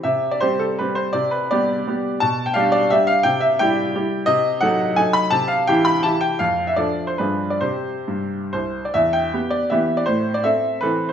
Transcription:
\new Staff \with { instrumentName = "Grand piano" } { \time 3/4 \key c \major \tempo 4 = 166 << { e''8. d''16 c''8 a'8 b'8 c''8 | d''8 b'8 d''2 | a''8. g''16 f''8 d''8 e''8 f''8 | g''8 e''8 g''2 |
ees''4 ges''4 aes''8 b''8 | a''8 f''8 g''8 b''8 a''8 g''8 | f''8. e''16 d''8. c''16 b'8. d''16 | c''2 c''8. d''16 |
e''8 g''4 d''8 e''8. d''16 | c''8. d''16 e''4 b'8. c''16 | } \\ { c4 <g c' g'>4 <g c' g'>4 | c4 <g b g'>4 <g b g'>4 | b,4 <g d' g'>4 <g d' g'>4 | c4 <g e' g'>4 <g e' g'>4 |
c4 <ges ees' a'>4 <ges ees' a'>4 | c4 <e e' g'>4 <e e' g'>4 | f,4 <f d' a'>4 <g, f d' aes'>4 | <c c' g'>4 g,4 c,4 |
e,4 <b g'>4 <e b g'>4 | a,4 <c' a'>4 <e c' a'>4 | } >> }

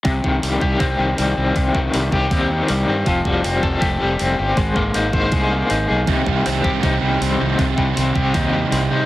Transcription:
<<
  \new Staff \with { instrumentName = "Overdriven electric guitar" } { \time 4/4 \key c \minor \tempo 4 = 159 c8 ees8 g8 g'8 c'8 ees8 g8 c'8 | c8 ees8 g8 g'8 c'8 ees8 g8 c'8 | f8 g8 c'8 a'8 g'8 g8 c'8 g'8 | aes8 bes8 ees'8 c''8 aes'8 bes8 ees'8 aes'8 |
c8 g8 c'8 g'8 ees'8 g8 c'8 ees'8 | c8 g8 c'8 g'8 ees'8 g8 c'8 ees'8 | }
  \new Staff \with { instrumentName = "Distorted electric guitar" } { \clef bass \time 4/4 \key c \minor r1 | r1 | r1 | r1 |
<c ees g c' g'>1~ | <c ees g c' g'>1 | }
  \new Staff \with { instrumentName = "Fingered electric bass" } { \clef bass \time 4/4 \key c \minor c,8 c,8 c,8 c,8 c,8 c,8 c,8 c,8 | c,8 c,8 c,8 c,8 ees,4 c,8 g,8 | f,,8 f,,8 f,,8 f,,8 f,,8 f,,8 f,,8 g,,8 | aes,,8 aes,,8 aes,,8 aes,,8 c,4 aes,,8 b,,8 |
c,8 c,8 c,8 c,8 c,8 c,8 c,8 c,8 | c,8 c,8 c,8 c,8 ees,4 c,8 c8 | }
  \new DrumStaff \with { instrumentName = "Drums" } \drummode { \time 4/4 <hho bd>8 bd8 hho8 bd8 <hho bd>4 hho4 | <hho bd>8 bd8 hho8 bd8 <hho bd>4 hho4 | <hho bd>8 bd8 hho8 bd8 <hho bd>4 hho4 | <hho bd>8 bd8 hho8 bd8 <hho bd>4 hho4 |
<hho bd>8 bd8 hho8 bd8 <hho bd>4 hho4 | <hho bd>8 bd8 hho8 bd8 <hho bd>4 hho4 | }
>>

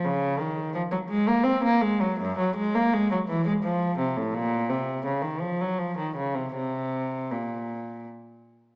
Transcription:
\new Staff \with { instrumentName = "Cello" } { \clef bass \time 3/4 \key bes \minor \tempo 4 = 83 des8 ees8 f16 ges16 aes16 bes16 c'16 bes16 aes16 ges16 | ges,16 ges16 aes16 bes16 aes16 ges16 e16 aes16 f8 c16 a,16 | bes,8 c8 des16 ees16 f16 ges16 f16 ees16 des16 c16 | c4 bes,4 r4 | }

